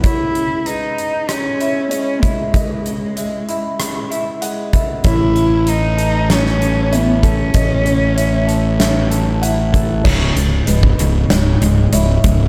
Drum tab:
CC |----------------|----------------|----------------|----------------|
HH |x-x-x-x-x-x-x-x-|x-x-x-x-x-x-x-x-|x-x-x-x-x-x-x-x-|x-x-x-x-x-x-x-x-|
SD |--------r-------|--------r-------|--------oo------|--------o-------|
BD |o-------------o-|o-------------o-|o-------------o-|o-------------o-|

CC |x---------------|
HH |--x-x-x-x-x-x-x-|
SD |--------o-------|
BD |o----o--------o-|